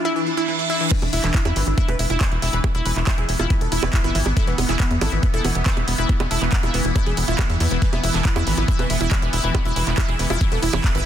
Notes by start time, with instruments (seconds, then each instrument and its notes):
Already playing: synth drone E3 D4
0.05 synth arpeggio sound E4, supersaw synth E4, reverse cymbal
0.16 synth arpeggio sound E3, supersaw synth E4
0.27 supersaw synth E4
0.37 synth arpeggio sound E4, supersaw synth E4
0.48 synth arpeggio sound E3, supersaw synth E4
0.59 supersaw synth E4
0.70 synth arpeggio sound E4, supersaw synth E4
0.81 synth arpeggio sound E3, supersaw synth E4
0.91 synth drone E3 B3, synth arpeggio sound E3, supersaw synth B4, kick, closed hi-hat, crash
1.02 analog synth bass E1, supersaw synth E4, closed hi-hat, high bongo
1.13 analog synth bass E1, synth arpeggio sound E4, supersaw synth E4, open hi-hat
1.24 analog synth bass E1, synth arpeggio sound E3, supersaw synth A4, clap, closed hi-hat
1.34 supersaw synth E4, kick, clap, closed hi-hat
1.45 analog synth bass E2, supersaw synth E4, synth arpeggio sound E4, closed hi-hat, high bongo
1.56 analog synth bass G#1, synth arpeggio sound E3, supersaw synth B4, open hi-hat
1.67 analog synth bass G#1, supersaw synth E4, closed hi-hat
1.78 synth arpeggio sound E4, supersaw synth E4, kick, closed hi-hat
1.88 analog synth bass E1, synth arpeggio sound E3, supersaw synth B4, closed hi-hat, high bongo
1.99 analog synth bass E1, supersaw synth E4, open hi-hat
2.10 analog synth bass E1, supersaw synth E4, synth arpeggio sound E4, closed hi-hat
2.21 synth arpeggio sound E3, supersaw synth D5, kick, clap, closed hi-hat, high bongo
2.32 analog synth bass E1, supersaw synth E4, closed hi-hat
2.42 analog synth bass E1, synth arpeggio sound E4, supersaw synth E4, open hi-hat
2.53 analog synth bass E1, synth arpeggio sound E3, supersaw synth B4, closed hi-hat
2.64 supersaw synth E4, kick, closed hi-hat, high bongo
2.75 analog synth bass E1, supersaw synth E4, synth arpeggio sound E4, closed hi-hat
2.85 analog synth bass E1, synth arpeggio sound E3, supersaw synth B4, open hi-hat
2.96 analog synth bass E1, supersaw synth E4, clap, closed hi-hat
3.07 supersaw synth E4, synth arpeggio sound E4, kick, clap, closed hi-hat, high bongo
3.18 analog synth bass E1, synth arpeggio sound E3, supersaw synth G#4, closed hi-hat
3.29 analog synth bass E1, supersaw synth E4, open hi-hat
3.39 analog synth bass E1, synth arpeggio sound E4, supersaw synth F4, closed hi-hat, high bongo
3.50 synth arpeggio sound E3, supersaw synth E4, kick, closed hi-hat
3.61 analog synth bass E1, supersaw synth A4, closed hi-hat
3.72 analog synth bass E1, synth arpeggio sound E4, supersaw synth E4, open hi-hat
3.83 analog synth bass F1, synth arpeggio sound E3, supersaw synth B4, closed hi-hat, high bongo
3.93 supersaw synth E4, kick, clap, closed hi-hat
4.04 analog synth bass G#1, synth arpeggio sound E4, supersaw synth B4, closed hi-hat
4.15 analog synth bass G#1, synth arpeggio sound E3, supersaw synth E4, open hi-hat
4.26 analog synth bass G#1, supersaw synth E4, high bongo
4.37 synth arpeggio sound E4, supersaw synth A4, kick, closed hi-hat
4.47 analog synth bass E1, synth arpeggio sound E3, supersaw synth B3, closed hi-hat
4.58 analog synth bass E1, supersaw synth B3, open hi-hat, high bongo
4.69 analog synth bass E1, synth arpeggio sound E4, supersaw synth G#4, clap, closed hi-hat
4.80 synth arpeggio sound E3, supersaw synth B3, kick, clap, closed hi-hat
4.91 analog synth bass E2, supersaw synth B3, closed hi-hat
5.01 analog synth bass G#1, synth arpeggio sound E4, supersaw synth A4, open hi-hat, high bongo
5.12 analog synth bass G#1, synth arpeggio sound E3, supersaw synth B3, closed hi-hat
5.23 supersaw synth B3, kick, closed hi-hat
5.34 analog synth bass E1, synth arpeggio sound E4, supersaw synth A4, closed hi-hat
5.44 analog synth bass E1, synth arpeggio sound E3, supersaw synth B3, open hi-hat, high bongo
5.55 analog synth bass E1, supersaw synth B3, closed hi-hat
5.66 synth arpeggio sound E4, supersaw synth B4, kick, clap, closed hi-hat
5.77 analog synth bass E1, synth arpeggio sound E3, supersaw synth B3, closed hi-hat, high bongo
5.88 analog synth bass E1, supersaw synth B3, open hi-hat
5.98 analog synth bass E1, synth arpeggio sound E4, supersaw synth B4, closed hi-hat
6.09 synth arpeggio sound E3, supersaw synth B3, kick, closed hi-hat
6.20 analog synth bass E1, supersaw synth B3, closed hi-hat, high bongo
6.31 analog synth bass E1, synth arpeggio sound E4, supersaw synth A4, open hi-hat
6.42 analog synth bass E1, synth arpeggio sound E3, supersaw synth B3, clap
6.52 supersaw synth B3, kick, clap, closed hi-hat
6.63 analog synth bass E1, synth arpeggio sound E4, supersaw synth F4, closed hi-hat, high bongo
6.74 analog synth bass E1, synth arpeggio sound E3, supersaw synth B3, open hi-hat
6.85 analog synth bass E1, supersaw synth E4, closed hi-hat
6.96 supersaw synth B3, synth arpeggio sound E4, kick, closed hi-hat, high bongo
7.06 analog synth bass E1, synth arpeggio sound E3, supersaw synth G#4, closed hi-hat
7.17 analog synth bass E1, supersaw synth B3, open hi-hat
7.28 analog synth bass E1, synth arpeggio sound E4, supersaw synth F4, closed hi-hat
7.39 synth arpeggio sound E3, supersaw synth B3, kick, clap, closed hi-hat, high bongo
7.50 analog synth bass E2, supersaw synth E4, closed hi-hat
7.60 analog synth bass E2, supersaw synth B3, synth arpeggio sound E4, open hi-hat
7.71 analog synth bass E1, synth arpeggio sound E3, supersaw synth B3, closed hi-hat
7.82 synth arpeggio sound E3, synth drone E4, supersaw synth B4, kick, closed hi-hat
7.93 analog synth bass E1, synth arpeggio sound B3, supersaw synth E4, closed hi-hat, high bongo
8.03 analog synth bass E1, synth arpeggio sound E4, supersaw synth E4, open hi-hat
8.14 analog synth bass E1, synth arpeggio sound E3, supersaw synth A4, clap, closed hi-hat
8.25 synth arpeggio sound B3, supersaw synth E4, kick, clap, closed hi-hat
8.36 analog synth bass E2, synth arpeggio sound E4, supersaw synth E4, closed hi-hat, high bongo
8.47 analog synth bass G#1, synth arpeggio sound E3, supersaw synth B4, open hi-hat
8.57 analog synth bass G#1, synth arpeggio sound B3, supersaw synth E4, closed hi-hat
8.68 synth arpeggio sound E4, supersaw synth E4, kick, closed hi-hat
8.79 analog synth bass E1, synth arpeggio sound E3, supersaw synth B4, closed hi-hat, high bongo
8.90 analog synth bass E1, synth arpeggio sound B3, supersaw synth E4, open hi-hat
9.01 analog synth bass E1, synth arpeggio sound E4, supersaw synth E4, closed hi-hat
9.11 synth arpeggio sound E3, supersaw synth D5, kick, clap, closed hi-hat, high bongo
9.22 analog synth bass E1, synth arpeggio sound B3, supersaw synth E4, closed hi-hat
9.33 analog synth bass E1, synth arpeggio sound E4, supersaw synth E4, open hi-hat
9.44 analog synth bass E1, synth arpeggio sound E3, supersaw synth B4, closed hi-hat
9.55 synth arpeggio sound B3, supersaw synth E4, kick, closed hi-hat, high bongo
9.65 analog synth bass E1, supersaw synth E4, synth arpeggio sound E4, closed hi-hat
9.76 analog synth bass E1, synth arpeggio sound E3, supersaw synth B4, open hi-hat
9.87 analog synth bass E1, synth arpeggio sound B3, supersaw synth E4, clap, closed hi-hat
9.98 synth arpeggio sound E4, supersaw synth E4, kick, clap, closed hi-hat, high bongo
10.09 analog synth bass E1, synth arpeggio sound E3, supersaw synth G#4, closed hi-hat
10.19 analog synth bass E1, synth arpeggio sound B3, supersaw synth E4, open hi-hat
10.30 analog synth bass E1, synth arpeggio sound E4, supersaw synth F4, closed hi-hat, high bongo
10.41 synth arpeggio sound E3, supersaw synth E4, kick, closed hi-hat
10.52 analog synth bass E1, synth arpeggio sound B3, supersaw synth A4, closed hi-hat
10.63 analog synth bass E1, synth arpeggio sound E4, supersaw synth E4, open hi-hat
10.73 analog synth bass F1, synth arpeggio sound E3, supersaw synth B4, high bongo
10.84 synth arpeggio sound B3, supersaw synth E4, kick, clap, closed hi-hat
10.95 analog synth bass G#1, synth arpeggio sound E4, supersaw synth B4, closed hi-hat